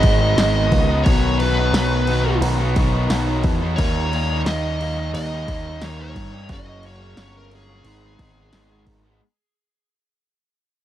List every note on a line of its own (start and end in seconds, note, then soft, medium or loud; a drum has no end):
0.00 0.36 G#1 medium
0.00 0.37 D#3 medium
0.00 0.22 G#3 medium
0.00 1.10 D#5 loud
0.00 kick medium
0.00 crash medium
0.05 0.21 B3 medium
0.05 0.21 D#4 medium
0.21 0.37 G#3 medium
0.21 0.38 B3 medium
0.21 0.39 D#4 medium
0.37 0.71 G#1 medium
0.37 0.89 G#2 loud
0.37 0.89 D#3 medium
0.37 0.56 G#3 loud
0.37 0.55 B3 medium
0.37 0.55 D#4 loud
0.37 snare loud
0.37 crash medium
0.55 0.90 G#3 medium
0.55 0.89 B3 medium
0.55 0.88 D#4 medium
0.72 1.05 C#2 medium
0.72 kick medium
0.72 crash medium
0.89 1.05 G#3 medium
0.89 1.05 B3 medium
0.89 1.07 D#4 medium
1.04 1.72 B1 medium
1.04 1.73 B2 medium
1.04 1.39 D#3 loud
1.04 1.40 F#3 loud
1.04 1.41 B3 medium
1.04 1.42 D#4 loud
1.04 1.37 C#5 medium
1.04 kick loud
1.04 crash medium
1.39 1.73 D#3 medium
1.39 1.58 F#3 medium
1.39 1.58 B3 medium
1.39 1.57 D#4 medium
1.39 2.38 B4 medium
1.39 crash medium
1.58 1.74 F#3 medium
1.58 1.74 B3 medium
1.58 1.76 D#4 medium
1.73 2.40 B1 medium
1.73 2.42 B2 medium
1.73 2.07 D#3 loud
1.73 2.08 F#3 loud
1.73 2.09 B3 loud
1.73 2.10 D#4 loud
1.73 snare loud
1.73 crash medium
2.07 2.59 D#3 medium
2.07 2.26 F#3 medium
2.07 2.25 B3 medium
2.07 2.24 D#4 medium
2.07 crash medium
2.25 2.60 F#3 medium
2.25 2.59 B3 medium
2.25 2.58 D#4 medium
2.41 2.75 B1 loud
2.41 crash medium
2.59 2.76 F#3 medium
2.59 2.77 B3 medium
2.59 2.77 D#4 medium
2.76 3.09 B1 medium
2.76 3.09 D#3 medium
2.76 2.94 F#3 medium
2.76 2.93 B3 medium
2.76 2.92 D#4 medium
2.76 kick medium
2.76 crash medium
2.93 3.09 F#3 medium
2.93 3.09 B3 medium
2.93 3.10 D#4 medium
3.09 3.43 B1 medium
3.09 3.61 B2 loud
3.09 3.61 D#3 medium
3.09 3.27 F#3 loud
3.09 3.27 B3 loud
3.09 3.25 D#4 loud
3.09 snare loud
3.09 crash medium
3.26 3.61 F#3 medium
3.26 3.60 B3 medium
3.26 3.59 D#4 medium
3.44 3.77 E2 medium
3.44 kick medium
3.44 crash medium
3.61 3.77 F#3 medium
3.61 3.76 B3 medium
3.61 3.76 D#4 medium
3.76 4.44 D#2 loud
3.76 4.12 D#3 loud
3.76 4.12 G3 loud
3.76 4.13 A#3 loud
3.76 4.41 C#5 loud
3.76 kick loud
3.76 crash medium
3.80 4.13 D#4 loud
4.13 4.45 D#3 medium
4.13 4.31 G3 medium
4.13 4.30 A#3 medium
4.13 4.29 D#4 medium
4.13 crash medium
4.30 4.46 G3 medium
4.30 4.47 A#3 medium
4.30 4.47 D#4 medium
4.46 5.12 D#2 loud
4.46 4.80 D#3 loud
4.46 4.80 G3 loud
4.46 4.81 A#3 loud
4.46 4.82 D#4 loud
4.46 5.11 D#5 loud
4.46 snare loud
4.46 crash medium
4.81 5.31 D#3 medium
4.81 4.99 G3 medium
4.81 4.99 A#3 medium
4.81 4.97 D#4 medium
4.81 crash medium
4.98 5.33 G3 medium
4.98 5.32 A#3 medium
4.98 5.30 D#4 medium
5.14 5.47 D#2 loud
5.14 5.84 D#5 loud
5.14 crash medium
5.32 5.49 G3 medium
5.32 5.50 A#3 medium
5.32 5.50 D#4 medium
5.48 5.81 D#2 medium
5.48 5.83 D#3 medium
5.48 5.68 G3 medium
5.48 5.66 A#3 medium
5.48 5.65 D#4 medium
5.48 kick medium
5.48 crash medium
5.66 5.83 G3 medium
5.66 5.84 A#3 medium
5.66 5.85 D#4 medium
5.82 6.15 D#2 medium
5.82 6.34 D#3 loud
5.82 6.01 G3 loud
5.82 6.00 A#3 loud
5.82 6.01 C#5 loud
5.82 snare loud
5.82 crash medium
5.86 5.99 D#4 loud
6.00 6.33 G3 medium
6.00 6.32 A#3 medium
6.00 6.31 D#4 medium
6.00 6.48 C#5 loud
6.16 6.49 G2 medium
6.16 kick medium
6.16 crash medium
6.32 6.49 G3 medium
6.32 6.48 A#3 medium
6.32 6.47 D#4 medium
6.49 7.15 F#1 loud
6.49 7.16 F#2 loud
6.49 6.83 C#3 medium
6.49 6.83 F#3 medium
6.49 6.84 A#3 medium
6.49 6.85 C#4 loud
6.49 6.86 D#5 medium
6.49 kick loud
6.49 crash medium
6.83 7.17 C#3 medium
6.83 7.01 F#3 medium
6.83 7.01 A#3 medium
6.83 7.00 C#4 medium
6.83 7.17 C#5 loud
6.83 crash medium
7.01 7.17 F#3 medium
7.01 7.18 A#3 medium
7.01 7.18 C#4 medium
7.17 7.83 G1 loud
7.17 7.83 F#2 medium
7.17 7.50 C#3 loud
7.17 7.51 F#3 medium
7.17 7.52 A#3 loud
7.17 7.52 C#4 loud
7.17 7.34 C#5 loud
7.17 snare loud
7.17 crash medium
7.37 7.52 A#4 medium
7.51 7.83 C#3 medium
7.51 7.68 F#3 medium
7.51 7.68 A#3 medium
7.51 7.67 C#4 medium
7.51 crash medium
7.55 8.85 G#4 medium
7.68 7.84 F#3 medium
7.68 7.84 A#3 medium
7.68 7.83 C#4 medium
7.84 8.18 G#1 medium
7.84 8.36 G#2 medium
7.84 8.18 D#3 medium
7.84 8.03 G#3 medium
7.84 8.03 B3 medium
7.84 8.01 D#4 medium
7.84 crash medium
8.03 8.19 G#3 medium
8.03 8.19 B3 medium
8.03 8.20 D#4 medium
8.19 8.52 G#1 medium
8.19 8.53 D#3 medium
8.19 8.37 G#3 medium
8.19 8.36 B3 medium
8.19 8.35 D#4 medium
8.19 kick medium
8.19 crash medium
8.36 8.53 G#3 medium
8.36 8.54 B3 medium
8.36 8.54 D#4 medium
8.53 8.86 G#1 medium
8.53 9.04 G#2 medium
8.53 9.05 D#3 medium
8.53 8.71 G#3 loud
8.53 8.70 B3 loud
8.53 8.69 D#4 loud
8.53 snare loud
8.53 crash medium
8.70 9.04 G#3 medium
8.70 9.04 B3 medium
8.70 9.02 D#4 medium
8.87 9.20 G#1 medium
8.87 kick medium
8.87 crash medium
9.04 9.20 G#3 medium
9.04 9.19 B3 medium
9.04 9.19 D#4 medium